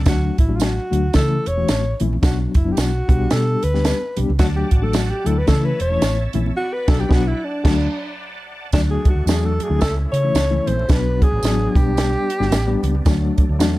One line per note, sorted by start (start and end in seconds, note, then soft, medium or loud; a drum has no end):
0.05 0.29 D2 loud
0.05 0.35 F#3 medium
0.05 0.35 A3 medium
0.05 0.35 D4 medium
0.05 0.36 F#4 medium
0.05 0.37 F#4 medium
0.05 kick loud
0.05 snare loud
0.05 closed hi-hat medium
0.05 tambourine medium
0.05 low conga medium
0.38 0.78 A1 medium
0.38 0.58 E4 medium
0.38 kick medium
0.38 closed hi-hat medium
0.49 0.74 F#3 medium
0.49 0.74 A3 medium
0.49 0.74 D4 medium
0.49 0.74 F#4 medium
0.56 0.64 F4 medium
0.56 tambourine loud
0.60 1.16 F#4 medium
0.60 snare loud
0.60 closed hi-hat medium
0.60 muted conga soft
0.77 muted conga soft
0.91 1.08 D2 medium
0.91 1.05 F#3 medium
0.91 1.05 A3 medium
0.91 1.06 D4 medium
0.91 1.06 F#4 medium
0.91 closed hi-hat medium
1.13 1.38 C#3 medium
1.13 1.44 E3 medium
1.13 1.44 A3 medium
1.13 1.44 C#4 medium
1.13 1.44 E4 medium
1.13 1.49 A4 loud
1.13 kick medium
1.13 snare loud
1.13 closed hi-hat medium
1.13 tambourine medium
1.13 muted conga soft
1.31 muted conga soft
1.46 1.63 E1 medium
1.46 2.01 C#5 loud
1.46 closed hi-hat medium
1.57 1.82 E3 medium
1.57 1.82 A3 medium
1.57 1.82 C#4 medium
1.57 1.82 F#4 medium
1.68 1.92 A1 medium
1.68 snare loud
1.68 closed hi-hat medium
1.68 tambourine medium
1.68 muted conga soft
1.68 high conga medium
1.86 muted conga soft
2.00 2.17 A#1 medium
2.00 2.15 E3 medium
2.00 2.15 A3 medium
2.00 2.15 C#4 medium
2.00 2.15 E4 medium
2.00 closed hi-hat medium
2.00 high conga medium
2.00 low conga medium
2.13 high conga medium
2.22 2.46 B1 medium
2.22 2.52 F#3 medium
2.22 2.52 B3 medium
2.22 2.52 D4 medium
2.22 2.52 F#4 medium
2.22 2.39 F#4 medium
2.22 kick loud
2.22 snare loud
2.22 closed hi-hat loud
2.22 tambourine medium
2.22 muted conga soft
2.22 low conga medium
2.40 muted conga soft
2.54 2.71 F#1 medium
2.54 2.74 E4 medium
2.54 kick medium
2.54 closed hi-hat medium
2.64 2.90 F#3 medium
2.64 2.90 B3 medium
2.64 2.90 D4 medium
2.64 2.90 E4 medium
2.73 2.80 G4 medium
2.77 3.00 B1 medium
2.77 3.33 F#4 loud
2.77 snare medium
2.77 closed hi-hat medium
2.77 tambourine loud
3.08 3.25 B1 medium
3.08 3.63 G3 medium
3.08 3.63 B3 medium
3.08 3.63 D4 medium
3.08 3.63 G4 medium
3.08 kick loud
3.08 closed hi-hat medium
3.30 3.55 B2 loud
3.30 3.66 A4 loud
3.30 snare loud
3.30 closed hi-hat medium
3.30 tambourine medium
3.48 muted conga soft
3.63 3.91 D2 medium
3.63 4.18 B4 loud
3.63 closed hi-hat medium
3.74 3.99 G3 medium
3.74 3.99 B3 medium
3.74 3.99 D4 medium
3.74 3.99 G4 medium
3.74 snare soft
3.85 snare loud
3.85 closed hi-hat loud
3.85 tambourine medium
3.85 muted conga soft
3.85 high conga medium
4.02 muted conga soft
4.17 4.26 B1 medium
4.17 4.31 G3 medium
4.17 4.31 B3 medium
4.17 4.31 D4 medium
4.17 4.31 G4 medium
4.17 closed hi-hat medium
4.17 high conga medium
4.17 low conga medium
4.29 4.37 C#2 medium
4.29 high conga medium
4.38 4.63 D2 loud
4.38 4.69 F#3 medium
4.38 4.69 A3 medium
4.38 4.69 D4 medium
4.38 4.69 F#4 medium
4.38 4.47 F#4 medium
4.38 5.47 D5 medium
4.38 5.46 F#5 medium
4.38 6.54 A5 medium
4.38 kick loud
4.38 snare loud
4.38 closed hi-hat medium
4.38 tambourine medium
4.38 muted conga soft
4.38 low conga medium
4.55 4.73 G4 medium
4.55 muted conga soft
4.71 5.11 A1 medium
4.71 4.85 F#4 medium
4.71 kick medium
4.71 closed hi-hat medium
4.82 5.07 F#3 medium
4.82 5.07 A3 medium
4.82 5.07 D4 medium
4.82 5.07 F#4 medium
4.82 4.97 A4 medium
4.93 5.12 F#4 medium
4.93 snare loud
4.93 closed hi-hat medium
4.93 tambourine medium
5.11 5.28 G4 medium
5.11 muted conga soft
5.25 5.42 D2 medium
5.25 5.39 F#3 medium
5.25 5.39 A3 medium
5.25 5.39 D4 medium
5.25 5.39 E4 medium
5.25 5.40 A4 medium
5.25 closed hi-hat medium
5.38 5.48 B4 medium
5.47 5.72 C#3 loud
5.47 5.77 E3 medium
5.47 5.77 A3 medium
5.47 5.77 C#4 medium
5.47 5.77 E4 medium
5.47 5.66 A4 medium
5.47 6.55 C#5 medium
5.47 6.56 E5 medium
5.47 kick medium
5.47 snare medium
5.47 closed hi-hat medium
5.47 tambourine medium
5.65 5.80 B4 medium
5.80 5.96 E1 medium
5.80 6.31 C#5 loud
5.80 closed hi-hat medium
5.90 6.15 E3 medium
5.90 6.15 A3 medium
5.90 6.16 C#4 medium
5.90 6.16 E4 medium
6.02 6.25 A1 loud
6.02 snare loud
6.02 closed hi-hat loud
6.02 tambourine loud
6.02 muted conga soft
6.02 high conga medium
6.33 6.50 A#1 medium
6.33 6.48 E3 medium
6.33 6.48 A3 medium
6.33 6.48 C#4 medium
6.33 6.48 E4 medium
6.33 closed hi-hat medium
6.33 high conga medium
6.33 low conga medium
6.46 high conga medium
6.56 6.75 F#4 loud
6.56 8.71 D5 medium
6.56 8.71 F#5 medium
6.56 7.42 B5 medium
6.74 6.91 B4 loud
6.88 7.03 B1 loud
6.88 7.03 F#3 loud
6.88 7.03 B3 medium
6.88 7.03 D4 loud
6.88 7.03 F#4 loud
6.88 7.02 A4 medium
6.88 kick loud
6.88 snare loud
6.88 crash medium
7.00 7.14 G4 medium
7.09 7.32 B1 medium
7.09 7.32 F#3 medium
7.09 7.32 B3 loud
7.09 7.31 D4 loud
7.09 7.32 F#4 loud
7.09 7.30 F#4 loud
7.09 kick loud
7.09 snare loud
7.28 7.46 E4 medium
7.43 8.20 D4 medium
7.43 8.72 A5 medium
7.64 7.86 D2 medium
7.64 7.86 F#3 medium
7.64 7.86 A3 loud
7.64 7.86 D4 medium
7.64 7.86 F#4 loud
7.64 kick loud
7.64 snare loud
7.64 crash medium
8.72 8.96 D2 loud
8.72 9.10 F#3 medium
8.72 9.10 A3 medium
8.72 10.88 A3 medium
8.72 9.10 D4 medium
8.72 8.82 D4 medium
8.72 9.81 D4 medium
8.72 9.10 F#4 medium
8.72 9.81 F#4 medium
8.72 kick loud
8.72 snare loud
8.72 closed hi-hat medium
8.72 tambourine medium
8.72 muted conga soft
8.72 low conga medium
8.90 9.08 G#4 medium
8.90 muted conga soft
9.05 kick medium
9.05 closed hi-hat medium
9.10 9.30 F#4 medium
9.15 9.24 D2 medium
9.26 9.58 E2 medium
9.26 9.57 F#3 medium
9.26 9.57 A3 medium
9.26 9.57 D4 medium
9.26 9.57 F#4 medium
9.26 9.47 G#4 medium
9.26 snare medium
9.26 closed hi-hat medium
9.26 tambourine loud
9.26 high conga soft
9.44 9.65 A4 medium
9.44 muted conga soft
9.60 9.81 G#4 medium
9.60 closed hi-hat medium
9.60 low conga medium
9.70 9.78 D2 medium
9.70 9.81 F#3 medium
9.70 9.81 A3 medium
9.70 9.81 D4 medium
9.70 9.81 E4 medium
9.81 10.05 C#2 loud
9.81 10.88 C#4 medium
9.81 10.88 E4 medium
9.81 9.96 A4 loud
9.81 kick medium
9.81 snare loud
9.81 closed hi-hat medium
9.81 tambourine medium
9.97 muted conga soft
10.12 10.29 C#3 medium
10.12 10.69 C#5 loud
10.12 closed hi-hat medium
10.23 10.39 E3 medium
10.23 10.39 A3 medium
10.23 10.39 C#4 medium
10.23 10.39 E4 medium
10.35 10.58 C#2 loud
10.35 snare loud
10.35 closed hi-hat medium
10.35 tambourine medium
10.35 muted conga soft
10.35 high conga medium
10.50 10.76 E3 medium
10.50 10.76 A3 medium
10.50 10.76 C#4 medium
10.50 10.76 E4 medium
10.67 10.83 A#1 medium
10.67 10.92 C5 loud
10.67 closed hi-hat medium
10.67 high conga medium
10.67 low conga medium
10.79 high conga medium
10.89 11.21 B1 loud
10.89 11.26 F#3 medium
10.89 11.75 F#3 medium
10.89 11.26 B3 medium
10.89 13.04 B3 medium
10.89 11.26 D4 medium
10.89 13.79 D4 medium
10.89 11.26 F#4 medium
10.89 11.24 B4 loud
10.89 kick loud
10.89 snare loud
10.89 closed hi-hat medium
10.89 tambourine medium
10.89 muted conga soft
10.89 low conga medium
11.05 muted conga soft
11.22 11.78 G#4 loud
11.22 kick loud
11.22 closed hi-hat medium
11.32 11.40 A1 medium
11.43 11.66 A1 medium
11.43 11.73 F#3 medium
11.43 11.73 B3 medium
11.43 11.74 D4 medium
11.43 11.74 F#4 medium
11.43 snare medium
11.43 closed hi-hat loud
11.43 tambourine loud
11.43 high conga soft
11.61 muted conga soft
11.75 12.15 B1 medium
11.75 13.04 G3 medium
11.75 12.30 G3 medium
11.75 12.30 B3 medium
11.75 12.30 D4 medium
11.75 12.30 G4 medium
11.75 13.06 G4 loud
11.75 kick medium
11.75 closed hi-hat medium
11.75 low conga medium
11.97 snare loud
11.97 closed hi-hat medium
11.97 tambourine medium
12.14 muted conga soft
12.30 closed hi-hat medium
12.40 12.49 G1 medium
12.40 12.55 G3 medium
12.40 12.55 B3 medium
12.40 12.55 D4 medium
12.40 12.55 F#4 medium
12.40 snare soft
12.51 12.75 A1 medium
12.51 snare loud
12.51 closed hi-hat loud
12.51 tambourine medium
12.51 muted conga soft
12.51 high conga medium
12.67 12.93 G3 medium
12.67 12.93 B3 medium
12.67 12.93 D4 medium
12.67 12.93 G4 loud
12.67 muted conga soft
12.83 13.00 C#2 medium
12.83 closed hi-hat medium
12.83 high conga medium
12.83 low conga medium
12.95 high conga medium
13.05 13.29 D2 loud
13.05 13.79 F#3 medium
13.05 13.43 F#3 medium
13.05 13.79 A3 medium
13.05 13.43 A3 medium
13.05 13.43 D4 medium
13.05 13.43 F#4 loud
13.05 kick loud
13.05 snare loud
13.05 closed hi-hat medium
13.05 tambourine medium
13.05 muted conga soft
13.05 low conga medium
13.22 muted conga soft
13.38 kick medium
13.38 closed hi-hat medium
13.49 13.59 D2 medium
13.59 13.79 E2 medium
13.59 13.79 F#3 loud
13.59 13.79 A3 medium
13.59 13.79 D4 medium
13.59 13.79 F#4 loud
13.59 snare loud
13.59 closed hi-hat medium
13.59 tambourine loud
13.59 muted conga soft
13.59 high conga medium